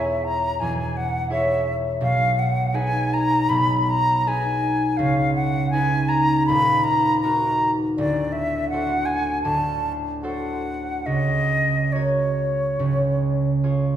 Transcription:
Already playing: E1 E2 E4 G#4 C#5 E5
0.24 A#5
0.60 E1 E2 G#5
0.97 F#5
1.30 E4 G#4 C#5 E5
2.01 B1 B2 F5
2.39 F#5
2.74 D#4 G#4 B4 G#5
3.14 A#5
3.49 B1 B2 B5
3.89 A#5
4.26 D#4 G#4 B4 G#5
4.97 C#2 C#3 F5
5.35 F#5
5.71 D#4 G#4 G#5
5.75 B4
6.09 A#5
6.47 D#1 D#2 B5
6.84 A#5
7.20 D#4 F#4 A#5
7.25 A#4
7.98 D1 D2 D5
8.32 E5
8.69 F#4 A4 F#5
8.74 C5
9.06 G#5
9.43 D1 D2 A5
10.23 F#4 A4 C5 F#5
11.06 C#2 C#3 D#5
11.92 F#4 A#4 C#5
12.79 C#2 C#3
13.63 F4 G#4 C#5

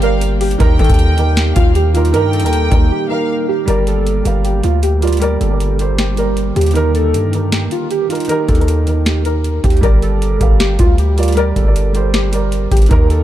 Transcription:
Already playing: G1 D3 A#3 G4 A#4 C5 D5 F5
0.00 G3 G4 A#4 F5, closed hi-hat
0.04 D5
0.21 closed hi-hat
0.41 G4, closed hi-hat, open hi-hat
0.51 closed hi-hat
0.58 D#2 D#3 A#3 D#4 G4 A#4 G5, kick, closed hi-hat
0.79 D#3 A4, kick, closed hi-hat
0.84 closed hi-hat
0.89 D#2, kick, closed hi-hat
0.94 closed hi-hat
0.99 closed hi-hat
1.16 D#3 D#4 G4 A#4, closed hi-hat
1.37 G4, snare, closed hi-hat
1.56 D#2 F4 F5, kick, closed hi-hat
1.75 G4, closed hi-hat
1.93 D#3 D#4 F4 G4 A#4, closed hi-hat
2.05 closed hi-hat
2.12 G2 D#3 D#4 G4 A#4 G5, closed hi-hat
2.33 A4, closed hi-hat
2.40 D#2 D#3 D#4, closed hi-hat
2.44 G4 A#4, closed hi-hat
2.53 closed hi-hat
2.70 D#2 D#3 D#4 G4 A#4, kick, closed hi-hat
2.91 G4
3.08 D#3 D#4 G4 A#4 F5
3.48 G4
3.66 G1 D3 G3 A#3 G4 A#4 D5, closed hi-hat
3.87 A4, closed hi-hat
4.07 closed hi-hat
4.23 G1 G3 G4 A#4 F5, closed hi-hat
4.44 G4, closed hi-hat
4.63 D2 F4, closed hi-hat
4.83 G4, closed hi-hat
5.01 G3 F4 G4 A#4 D5, closed hi-hat
5.07 closed hi-hat
5.13 closed hi-hat
5.17 G3, closed hi-hat
5.21 G4 A#4 D5, closed hi-hat
5.41 G1 A4, closed hi-hat
5.49 G3 G4 A#4 D5
5.60 closed hi-hat
5.77 G3 G4 A#4 C5, closed hi-hat
5.98 G4, snare, closed hi-hat
6.16 G3 G4 A#4 D5, closed hi-hat
6.37 closed hi-hat
6.56 D#2 G4, closed hi-hat
6.61 closed hi-hat
6.66 closed hi-hat
6.71 D#3 D#4, closed hi-hat
6.75 D#3 G4 A#4, closed hi-hat
6.95 A4, closed hi-hat
7.14 G2, closed hi-hat
7.31 D#3 D#4 G4 A#4, closed hi-hat
7.52 G4, snare, closed hi-hat
7.71 F4, closed hi-hat
7.91 G4, closed hi-hat
8.09 D#3 D#4 F4 G4 A#4, closed hi-hat
8.15 closed hi-hat
8.20 closed hi-hat
8.25 D#3, closed hi-hat
8.29 D#4 G4 A#4, closed hi-hat
8.48 D#2 A4, kick, closed hi-hat
8.55 D#3 D#4, closed hi-hat
8.59 G4 A#4, closed hi-hat
8.68 closed hi-hat
8.85 D#3 D#4 G4 A#4, closed hi-hat
9.06 G4, snare, closed hi-hat
9.24 D#3 D#4 G4 A#4, closed hi-hat
9.44 closed hi-hat
9.64 D#2 G4, kick, closed hi-hat
9.70 closed hi-hat
9.77 closed hi-hat
9.81 G1 G3 G4 A#4 D5, kick, closed hi-hat
10.02 A4, closed hi-hat
10.22 closed hi-hat
10.39 G1 G3 G4 A#4 F5, kick, closed hi-hat
10.60 G4, snare, closed hi-hat
10.79 D2 F4, kick, closed hi-hat
10.98 G4, closed hi-hat
11.16 G3 F4 G4 A#4 D5, closed hi-hat
11.23 closed hi-hat
11.28 closed hi-hat
11.32 G3, closed hi-hat
11.37 G4 A#4 D5, closed hi-hat
11.56 G1 A4, kick, closed hi-hat
11.64 G3 G4 A#4 D5
11.76 closed hi-hat
11.93 G3 G4 A#4 C5, closed hi-hat
12.14 G4, snare, closed hi-hat
12.31 G3 G4 A#4 D5, closed hi-hat
12.52 closed hi-hat
12.71 G1 G4, kick, closed hi-hat
12.77 closed hi-hat
12.82 closed hi-hat
12.86 D#3 D#4, closed hi-hat
12.91 D#2 G4 A#4, kick, closed hi-hat
13.10 A4, closed hi-hat

